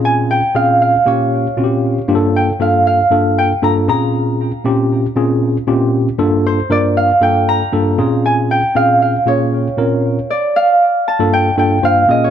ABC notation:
X:1
M:4/4
L:1/16
Q:1/4=117
K:Gm
V:1 name="Harp"
_a2 g2 f2 f2 _d6 z2 | z2 g2 f2 f4 g2 b2 b2- | b6 z8 z2 | z2 c2 d2 f2 g2 b6 |
_a2 g2 f2 f2 _d6 z2 | d2 f4 a2 g2 g2 f2 e _d |]
V:2 name="Tine electric piano"
[B,,C_DF_A]3 z [B,,CDFA]3 z [B,,B,DFG]3 z [B,,CDF^FG]3 z | [G,,B,DFGA]3 z [G,,B,DFA]3 z [G,,B,DFA]3 z [G,,B,DFA]2 [B,,C_DF_A]2- | [B,,C_DF_A]3 z [B,,CDFG]3 z [B,,CDFA]3 z [B,,CDFG]3 z | [G,,B,DFA]3 z [G,,B,DFB]3 z [G,,B,DFA]3 z [G,,B,DFA]2 [B,,C_DF_A]2- |
[B,,C_DF_A]3 z [B,,CDFA]3 z [B,,B,DFA]3 z [B,,CDFB]3 z | z6 z [G,,B,DFA]2 z [G,,B,DFA]2 [G,,B,DFc]2 [B,,B,_DF_A]2 |]